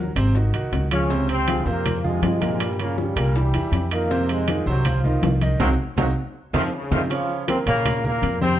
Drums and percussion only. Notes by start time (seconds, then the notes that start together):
0.16 high bongo, high timbale, maracas
0.35 high bongo, high conga, maracas
0.54 high bongo, high conga, high timbale, maracas
0.73 high bongo, low bongo, high conga, high timbale, maracas
0.91 high conga, high timbale, maracas
1.10 high bongo, maracas
1.29 high timbale, maracas
1.48 high bongo, high conga, high timbale, maracas
1.66 high conga, maracas
1.85 high bongo, high conga, low conga, high timbale, maracas
2.04 high conga, low conga, maracas
2.23 high bongo, low bongo, high conga, high timbale, low timbale, maracas
2.41 high conga, high timbale, maracas
2.60 high bongo, high conga, high timbale, maracas
2.79 high bongo, high conga, high timbale, maracas
2.98 high bongo, high conga, maracas
3.17 high bongo, high conga, high timbale, maracas
3.35 high bongo, maracas
3.54 high bongo, high conga, high timbale, maracas
3.73 high bongo, low bongo, high timbale, maracas
3.91 high timbale, maracas
4.10 high bongo, high conga, maracas
4.29 high conga, high timbale, maracas
4.48 high bongo, high conga, high timbale, maracas
4.67 high conga, maracas
4.85 high bongo, high conga, low conga, high timbale, maracas
5.04 high conga, low conga, maracas
5.22 high bongo, low bongo, high conga, high timbale, low timbale, maracas
5.41 high conga, high timbale, maracas
5.60 low bongo, low conga, high timbale, maracas
5.98 low bongo, low conga, high timbale, maracas
6.54 low bongo, low conga, high timbale, maracas
6.91 low bongo, low conga, high timbale, maracas
7.10 high bongo, high conga, high timbale, maracas
7.29 high bongo, high conga, maracas
7.48 high bongo, high conga, high timbale, maracas
7.67 high bongo, high conga, high timbale, maracas
7.85 high bongo, high conga, low conga, high timbale, maracas
8.04 high conga, low conga, maracas
8.23 high bongo, low bongo, high conga, high timbale, maracas
8.41 high bongo, high conga, maracas